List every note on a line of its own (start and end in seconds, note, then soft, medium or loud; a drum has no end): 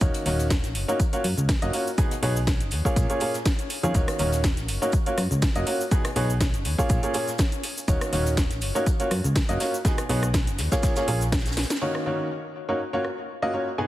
0.01 0.11 D#1 loud
0.01 0.23 D#3 medium
0.01 0.23 A#3 medium
0.01 0.23 C#4 medium
0.01 0.23 D#4 medium
0.01 0.23 F#4 medium
0.01 0.23 C#5 loud
0.01 kick loud
0.01 closed hi-hat medium
0.01 shaker medium
0.14 closed hi-hat soft
0.14 shaker soft
0.26 0.65 D#1 loud
0.26 0.46 D#3 medium
0.26 0.46 A#3 medium
0.26 0.46 C#4 medium
0.26 0.46 D#4 medium
0.26 0.46 F#4 medium
0.26 0.46 C#5 medium
0.26 snare medium
0.26 open hi-hat loud
0.26 shaker medium
0.39 closed hi-hat soft
0.39 shaker medium
0.50 kick loud
0.50 snare loud
0.50 closed hi-hat medium
0.50 shaker medium
0.64 0.77 A#1 medium
0.64 snare soft
0.64 closed hi-hat soft
0.64 shaker soft
0.75 0.85 F#1 medium
0.75 open hi-hat loud
0.75 shaker medium
0.88 0.98 A#3 medium
0.88 0.98 C#4 medium
0.88 0.98 D#4 medium
0.88 0.98 F#4 medium
0.88 0.98 C#5 medium
0.88 shaker medium
1.00 kick loud
1.00 closed hi-hat medium
1.00 shaker medium
1.13 1.24 A#3 medium
1.13 1.24 C#4 medium
1.13 1.24 F4 medium
1.13 1.24 F#4 medium
1.13 1.24 C#5 loud
1.13 closed hi-hat medium
1.13 shaker soft
1.24 1.34 F#2 medium
1.24 open hi-hat loud
1.24 shaker medium
1.38 1.56 C#2 loud
1.38 closed hi-hat soft
1.38 shaker medium
1.49 kick loud
1.49 snare loud
1.49 closed hi-hat medium
1.49 shaker loud
1.49 shaker medium
1.62 1.71 F#1 medium
1.62 1.72 A#3 medium
1.62 1.72 C#4 medium
1.62 1.72 F4 medium
1.62 1.72 F#4 medium
1.62 1.72 D#5 loud
1.62 closed hi-hat medium
1.62 shaker soft
1.73 1.87 A#3 medium
1.73 1.87 C#4 medium
1.73 1.87 F4 medium
1.73 1.87 F#4 medium
1.73 1.87 C#5 medium
1.73 open hi-hat loud
1.73 shaker medium
1.87 shaker medium
1.98 2.11 B2 medium
1.98 2.11 B3 medium
1.98 2.11 D#4 medium
1.98 2.11 F#4 medium
1.98 2.11 G#4 medium
1.98 2.11 G#5 medium
1.98 kick loud
1.98 closed hi-hat medium
1.98 shaker loud
1.98 shaker medium
2.11 closed hi-hat soft
2.11 shaker soft
2.23 2.62 B1 loud
2.23 2.36 B2 medium
2.23 2.36 B3 medium
2.23 2.36 D#4 medium
2.23 2.36 F#4 medium
2.23 2.36 G#4 medium
2.23 2.36 C#5 loud
2.23 open hi-hat loud
2.23 shaker medium
2.37 shaker medium
2.47 kick loud
2.47 snare loud
2.47 closed hi-hat medium
2.47 shaker medium
2.60 2.73 F#1 medium
2.60 closed hi-hat soft
2.60 shaker soft
2.71 2.82 D#2 medium
2.71 open hi-hat loud
2.71 shaker medium
2.85 3.04 A#2 loud
2.85 3.04 A#3 medium
2.85 3.04 C#4 medium
2.85 3.04 F4 medium
2.85 3.04 G#4 medium
2.85 3.04 C#5 loud
2.85 kick medium
2.85 shaker medium
2.96 3.06 A#1 medium
2.96 kick loud
2.96 closed hi-hat medium
2.96 shaker medium
3.10 3.19 A#2 medium
3.10 3.19 A#3 medium
3.10 3.19 C#4 medium
3.10 3.19 F4 medium
3.10 3.19 G#4 medium
3.10 3.19 C#5 medium
3.10 closed hi-hat medium
3.10 shaker soft
3.20 3.34 A#2 medium
3.20 3.34 A#3 medium
3.20 3.34 C#4 medium
3.20 3.34 F4 medium
3.20 3.34 G#4 medium
3.20 3.34 C#5 medium
3.20 open hi-hat loud
3.20 shaker medium
3.34 snare soft
3.34 closed hi-hat soft
3.34 shaker medium
3.46 kick loud
3.46 snare loud
3.46 closed hi-hat medium
3.46 shaker medium
3.59 closed hi-hat soft
3.59 shaker soft
3.70 open hi-hat loud
3.70 shaker medium
3.83 3.92 F2 loud
3.83 3.92 D#3 medium
3.83 3.92 A#3 medium
3.83 3.92 C#4 medium
3.83 3.92 F4 medium
3.83 3.92 G#4 medium
3.83 3.92 C#5 loud
3.83 closed hi-hat soft
3.83 shaker medium
3.95 4.05 D#1 loud
3.95 4.17 D#3 medium
3.95 4.17 A#3 medium
3.95 4.17 C#4 medium
3.95 4.17 D#4 medium
3.95 4.17 F#4 medium
3.95 4.17 C#5 loud
3.95 kick loud
3.95 closed hi-hat medium
3.95 shaker medium
4.08 cross-stick medium
4.08 closed hi-hat medium
4.08 closed hi-hat soft
4.08 shaker soft
4.19 4.59 D#1 loud
4.19 4.40 D#3 medium
4.19 4.40 A#3 medium
4.19 4.40 C#4 medium
4.19 4.40 D#4 medium
4.19 4.39 F#4 medium
4.19 4.40 C#5 medium
4.19 snare medium
4.19 open hi-hat loud
4.19 shaker medium
4.32 closed hi-hat soft
4.32 shaker medium
4.44 kick loud
4.44 snare loud
4.44 closed hi-hat medium
4.44 shaker medium
4.57 4.70 A#1 medium
4.57 snare soft
4.57 closed hi-hat soft
4.57 shaker soft
4.68 4.79 F#1 medium
4.68 open hi-hat loud
4.68 shaker medium
4.82 4.92 A#3 medium
4.82 4.92 C#4 medium
4.82 4.92 D#4 medium
4.82 4.92 F#4 medium
4.82 4.92 C#5 medium
4.82 shaker medium
4.92 kick loud
4.92 closed hi-hat medium
4.92 shaker medium
5.06 5.18 A#3 medium
5.06 5.18 C#4 medium
5.06 5.18 F4 medium
5.06 5.18 F#4 medium
5.06 5.18 C#5 loud
5.06 closed hi-hat medium
5.06 shaker soft
5.18 5.28 F#2 medium
5.18 cross-stick medium
5.18 open hi-hat loud
5.18 shaker medium
5.31 5.49 C#2 loud
5.31 closed hi-hat soft
5.31 shaker medium
5.42 kick loud
5.42 snare loud
5.42 closed hi-hat medium
5.42 shaker medium
5.55 5.64 F#1 medium
5.55 5.65 A#3 medium
5.55 5.65 C#4 medium
5.55 5.65 F4 medium
5.55 5.65 F#4 medium
5.55 5.65 D#5 loud
5.55 closed hi-hat soft
5.55 shaker soft
5.67 5.80 A#3 medium
5.67 5.80 C#4 medium
5.67 5.80 F4 medium
5.67 5.80 F#4 medium
5.67 5.80 C#5 medium
5.67 open hi-hat loud
5.67 shaker medium
5.81 shaker medium
5.91 6.05 B2 medium
5.91 6.05 B3 medium
5.91 6.05 D#4 medium
5.91 6.05 F#4 medium
5.91 6.05 G#4 medium
5.91 6.05 G#5 medium
5.91 kick loud
5.91 closed hi-hat medium
5.91 shaker medium
6.05 cross-stick medium
6.05 closed hi-hat soft
6.05 closed hi-hat medium
6.05 shaker soft
6.16 6.55 B1 loud
6.16 6.29 B2 medium
6.16 6.29 B3 medium
6.16 6.29 D#4 medium
6.16 6.29 F#4 medium
6.16 6.29 G#4 medium
6.16 6.29 C#5 loud
6.16 open hi-hat loud
6.16 shaker medium
6.30 shaker medium
6.41 kick loud
6.41 snare loud
6.41 closed hi-hat medium
6.41 shaker medium
6.54 6.67 F#1 medium
6.54 closed hi-hat medium
6.54 shaker soft
6.65 6.75 D#2 medium
6.65 open hi-hat loud
6.65 shaker medium
6.78 6.98 A#2 loud
6.78 6.98 A#3 medium
6.78 6.98 C#4 medium
6.78 6.98 F4 loud
6.78 6.98 G#4 medium
6.78 6.98 C#5 loud
6.78 kick medium
6.78 shaker medium
6.89 7.00 A#1 medium
6.89 kick loud
6.89 closed hi-hat medium
6.89 shaker medium
7.03 7.13 A#2 medium
7.03 7.13 A#3 medium
7.03 7.13 C#4 medium
7.03 7.13 F4 medium
7.03 7.13 G#4 medium
7.03 7.13 C#5 medium
7.03 closed hi-hat medium
7.03 shaker soft
7.14 7.28 A#2 medium
7.14 7.28 A#3 medium
7.14 7.28 C#4 medium
7.14 7.28 F4 medium
7.14 7.28 G#4 medium
7.14 7.28 C#5 medium
7.14 open hi-hat loud
7.14 shaker medium
7.27 snare soft
7.27 closed hi-hat soft
7.27 shaker medium
7.38 kick loud
7.38 snare loud
7.38 closed hi-hat medium
7.38 shaker medium
7.52 closed hi-hat medium
7.52 shaker soft
7.63 open hi-hat loud
7.63 shaker medium
7.77 shaker medium
7.88 7.98 D#1 loud
7.88 8.10 D#3 medium
7.88 8.10 A#3 medium
7.88 8.10 C#4 medium
7.88 8.10 D#4 medium
7.88 8.10 F#4 medium
7.88 8.10 C#5 loud
7.88 kick loud
7.88 closed hi-hat medium
7.88 shaker loud
7.88 shaker medium
8.01 cross-stick medium
8.01 closed hi-hat soft
8.01 closed hi-hat medium
8.01 shaker soft
8.13 8.52 D#1 loud
8.13 8.33 D#3 medium
8.13 8.33 A#3 medium
8.13 8.33 C#4 medium
8.13 8.33 D#4 medium
8.13 8.33 F#4 medium
8.13 8.33 C#5 loud
8.13 snare medium
8.13 open hi-hat loud
8.13 shaker medium
8.26 closed hi-hat soft
8.26 shaker medium
8.37 kick loud
8.37 snare loud
8.37 closed hi-hat medium
8.37 shaker medium
8.51 8.63 A#1 medium
8.51 snare soft
8.51 closed hi-hat medium
8.51 shaker soft
8.61 8.72 F#1 medium
8.61 open hi-hat loud
8.61 shaker medium
8.75 8.85 A#3 medium
8.75 8.85 C#4 medium
8.75 8.85 D#4 medium
8.75 8.85 F#4 medium
8.75 8.85 C#5 medium
8.75 shaker medium
8.86 kick loud
8.86 closed hi-hat medium
8.86 shaker medium
9.00 9.11 A#3 medium
9.00 9.11 C#4 medium
9.00 9.11 F4 medium
9.00 9.11 F#4 medium
9.00 9.11 C#5 loud
9.00 closed hi-hat medium
9.00 shaker soft
9.11 9.21 F#2 medium
9.11 cross-stick medium
9.11 open hi-hat loud
9.11 shaker medium
9.24 9.42 C#2 loud
9.24 closed hi-hat soft
9.24 shaker medium
9.35 kick loud
9.35 snare loud
9.35 closed hi-hat medium
9.35 shaker loud
9.35 shaker medium
9.49 9.58 F#1 medium
9.49 9.59 A#3 loud
9.49 9.59 C#4 medium
9.49 9.59 F4 medium
9.49 9.59 F#4 medium
9.49 9.59 D#5 loud
9.49 closed hi-hat medium
9.49 shaker soft
9.60 9.74 A#3 medium
9.60 9.74 C#4 medium
9.60 9.74 F4 medium
9.60 9.74 F#4 medium
9.60 9.74 C#5 medium
9.60 snare loud
9.60 open hi-hat loud
9.60 shaker medium
9.74 shaker medium
9.85 9.98 B2 medium
9.85 9.98 B3 medium
9.85 9.98 D#4 medium
9.85 9.98 F#4 medium
9.85 9.98 G#4 medium
9.85 9.98 G#5 loud
9.85 kick loud
9.85 snare loud
9.85 closed hi-hat medium
9.85 shaker medium
9.98 cross-stick medium
9.98 closed hi-hat soft
9.98 closed hi-hat medium
9.98 shaker soft
10.09 10.49 B1 loud
10.09 10.23 B2 medium
10.09 10.23 B3 medium
10.09 10.23 D#4 medium
10.09 10.23 F#4 medium
10.09 10.23 G#4 medium
10.09 10.23 C#5 loud
10.09 open hi-hat loud
10.09 shaker medium
10.23 cross-stick medium
10.23 closed hi-hat soft
10.23 shaker medium
10.33 kick loud
10.33 snare loud
10.33 closed hi-hat medium
10.33 shaker medium
10.47 10.60 F#1 medium
10.47 closed hi-hat medium
10.47 shaker soft
10.58 10.69 D#2 medium
10.58 snare loud
10.58 open hi-hat loud
10.58 shaker medium
10.72 10.91 A#2 loud
10.72 10.91 A#3 medium
10.72 10.91 C#4 medium
10.72 10.91 F4 medium
10.72 10.91 G#4 loud
10.72 10.91 C#5 loud
10.72 kick medium
10.72 snare loud
10.72 closed hi-hat soft
10.72 shaker medium
10.83 kick loud
10.83 snare loud
10.83 closed hi-hat medium
10.83 shaker medium
10.96 11.06 A#2 medium
10.96 11.06 A#3 medium
10.96 11.06 C#4 medium
10.96 11.06 F4 medium
10.96 11.06 G#4 medium
10.96 11.06 C#5 medium
10.96 snare loud
10.96 closed hi-hat medium
10.96 shaker medium
10.96 shaker soft
11.08 11.65 A#1 medium
11.08 11.21 A#2 medium
11.08 11.21 A#3 medium
11.08 11.21 C#4 medium
11.08 11.21 F4 medium
11.08 11.21 G#4 medium
11.08 11.21 C#5 medium
11.08 open hi-hat loud
11.08 shaker medium
11.21 snare soft
11.21 closed hi-hat soft
11.21 shaker medium
11.32 kick loud
11.32 snare medium
11.32 snare loud
11.32 closed hi-hat medium
11.32 shaker medium
11.39 snare medium
11.39 shaker medium
11.46 snare medium
11.46 closed hi-hat medium
11.46 shaker medium
11.46 shaker soft
11.51 snare medium
11.51 shaker medium
11.57 snare medium
11.57 open hi-hat loud
11.57 shaker medium
11.63 snare loud
11.63 shaker medium
11.70 snare medium
11.70 closed hi-hat soft
11.70 shaker medium
11.76 snare medium
11.76 shaker medium
11.82 12.03 D#3 medium
11.82 12.03 A#3 medium
11.82 12.03 C#4 medium
11.82 12.03 D#4 medium
11.82 12.03 F#4 medium
11.82 12.03 C#5 medium
11.95 cross-stick medium
12.06 12.26 D#3 medium
12.06 12.26 A#3 medium
12.06 12.26 C#4 medium
12.06 12.26 D#4 medium
12.06 12.26 F#4 medium
12.06 12.26 C#5 medium
12.69 12.79 A#3 medium
12.69 12.79 C#4 medium
12.69 12.79 D#4 medium
12.69 12.79 F#4 medium
12.69 12.79 C#5 medium
12.93 13.05 A#3 medium
12.93 13.05 C#4 medium
12.93 13.05 F4 medium
12.93 13.05 F#4 medium
12.93 13.05 C#5 medium
13.05 cross-stick medium
13.42 13.52 A#3 medium
13.42 13.52 C#4 medium
13.42 13.52 F4 medium
13.42 13.52 F#4 medium
13.42 13.52 D#5 medium
13.54 13.67 A#3 medium
13.54 13.67 C#4 medium
13.54 13.67 F4 medium
13.54 13.67 F#4 medium
13.54 13.67 C#5 medium
13.78 13.87 B2 medium
13.78 13.87 B3 medium
13.78 13.87 D#4 medium
13.78 13.87 F#4 medium
13.78 13.87 G#4 medium
13.78 13.87 G#5 medium